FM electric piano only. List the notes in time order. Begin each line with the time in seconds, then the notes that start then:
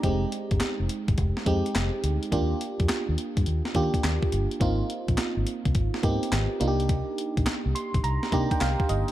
0.03 G#3 C4 D#4 G4
1.46 G#3 C4 D#4 G4
2.32 A#3 D4 F4 G4
3.75 A#3 D4 F4 G4
4.60 A#3 C4 D#4 F4
6.03 A#3 B3 D#4 G4
6.10 C4
6.60 A#3 D4 D#4 F4
6.68 G4
7.75 C6
8.04 A#5
8.32 A#3 D4 D#4 G4 A#5
8.52 G5
8.61 F5
8.89 D#5